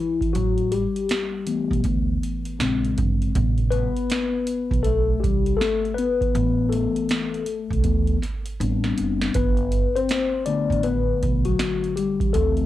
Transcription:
Already playing: E4
0.00 E3
0.21 kick, closed hi-hat
0.33 A1 F#3 F#4, closed hi-hat
0.58 closed hi-hat
0.72 G3 G4, closed hi-hat
0.96 closed hi-hat
1.09 snare, closed hi-hat
1.46 E3 A3 B3, closed hi-hat
1.71 B1, kick, closed hi-hat
1.84 D2, kick, closed hi-hat
2.23 closed hi-hat
2.45 closed hi-hat
2.59 A#1 C#3 G#3 C4, snare, closed hi-hat
2.85 closed hi-hat
2.98 G1, kick, closed hi-hat
3.22 closed hi-hat
3.35 A1 C3 G3 B3, kick, closed hi-hat
3.58 closed hi-hat
3.70 B3 B4, closed hi-hat
3.97 closed hi-hat
4.10 snare, closed hi-hat
4.47 closed hi-hat
4.71 B1, kick, closed hi-hat
4.83 A3 A4, closed hi-hat
5.20 G3 G4, kick
5.24 C2, closed hi-hat
5.46 closed hi-hat
5.57 A3 A4
5.61 snare, closed hi-hat
5.85 closed hi-hat
5.94 B3 B4, closed hi-hat
6.21 kick, closed hi-hat
6.34 A1 E3 A3 B3, closed hi-hat
6.69 A3 A4, closed hi-hat
6.96 closed hi-hat
7.09 snare, closed hi-hat
7.34 closed hi-hat
7.46 closed hi-hat
7.71 B1, kick, closed hi-hat
7.84 D2 E3 A3 B3, kick, closed hi-hat
8.07 closed hi-hat
8.22 snare, closed hi-hat
8.46 closed hi-hat
8.60 A1 G3 B3 C4 D4, closed hi-hat
8.84 snare, closed hi-hat
8.98 F#1, closed hi-hat
9.21 snare, closed hi-hat
9.34 G1 B3 B4, kick, closed hi-hat
9.57 closed hi-hat
9.72 closed hi-hat
9.96 C4 C5, closed hi-hat
10.09 snare, closed hi-hat
10.46 D3 A3 B3 D4 D5, closed hi-hat
10.70 A1, kick, closed hi-hat
10.83 B3 B4, closed hi-hat
11.23 B1, kick, closed hi-hat
11.45 F#3 F#4, closed hi-hat
11.59 snare, closed hi-hat
11.84 closed hi-hat
11.96 G3 G4, closed hi-hat
12.20 kick, closed hi-hat
12.33 D2 E3 F#3 A3 C4 A4, closed hi-hat
12.57 closed hi-hat

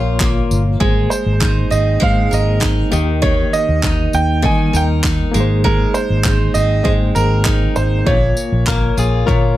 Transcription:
Already playing: A#1 A#2 A#3 F4 A#4 C#5
0.20 A#3, kick, clap
0.50 G1, tambourine
0.80 G#1 G#3 A#3 G#4 C5, kick
1.10 C5, tambourine
1.26 G#1
1.40 D#4, kick, clap
1.70 G#1 C4 D#5, tambourine
2.00 G#2 G#3 A#3 G#4 C5 F5, kick
2.31 G#1 A#4 D#5, tambourine
2.60 D#4, kick, clap
2.91 D#2 D#3 A#3 G4 D#5, tambourine
3.22 D#3 C#5, kick
3.53 D#5, tambourine
3.69 D#2
3.83 D#4, kick, clap
4.13 D#2 G5, tambourine
4.42 D#3 G3 A#3 D#5 G#5, kick
4.73 D#2 A#4 G5, tambourine
5.03 D#4, kick, clap
5.32 G#1 G#3 A#3 G#4 A#4, tambourine
5.40 C5
5.64 G#3 A#4, kick
5.94 C5, tambourine
6.10 G#1
6.25 D#4, kick, clap
6.54 G#1 C4 D#5, tambourine
6.83 G#2 G#3 A#3 G#4 C5 D#5, kick
7.15 G#1 A#4, tambourine
7.45 D#4, kick, clap
7.76 G#1 C5, tambourine
8.04 A#1 A#2 A#3 F4 C#5, kick
8.37 tambourine
8.52 A#1
8.67 A#3 A#4, kick, clap
8.97 A#1 F4 G#4, tambourine
9.26 A#2 A#3 F4 A#4 C#5, kick

